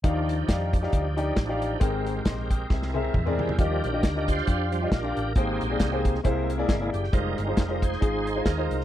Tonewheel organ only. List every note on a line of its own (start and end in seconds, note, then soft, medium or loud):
0.05 1.80 F3 medium
0.05 1.80 D4 medium
0.05 1.80 D#4 medium
0.05 2.67 G4 medium
1.82 3.57 G#3 medium
1.82 3.57 C4 medium
1.82 3.57 A#4 medium
2.70 3.58 E4 soft
3.40 3.59 G4 medium
3.58 3.89 F3 soft
3.58 3.90 G3 soft
3.58 3.82 D4 medium
3.58 3.83 G4 medium
3.58 3.83 A#4 medium
3.84 4.68 D4 medium
3.84 4.27 G4 medium
3.84 4.29 A#4 medium
4.28 5.13 F4 medium
4.28 4.90 G4 medium
4.28 4.88 C5 loud
4.72 4.89 F3 soft
4.72 4.90 G3 soft
4.72 4.90 D4 medium
4.91 5.33 D4 medium
4.91 5.33 G4 medium
4.91 5.37 A#4 medium
5.36 6.02 A#3 soft
5.36 6.21 C4 medium
5.36 6.21 D#4 medium
5.36 6.02 G4 soft
5.36 6.21 G#4 medium
6.24 6.90 G#3 soft
6.24 6.90 A#3 soft
6.24 6.90 E4 medium
6.93 7.13 G4 medium
7.13 7.79 G3 medium
7.13 7.79 G#3 soft
7.13 7.38 D#4 medium
7.13 7.37 A#4 medium
7.38 7.81 D#4 medium
7.38 7.84 A#4 medium
7.82 8.45 D#4 medium
7.82 8.67 G#4 medium
7.82 8.42 C5 medium
8.45 8.85 D#4 medium
8.45 8.85 A#4 medium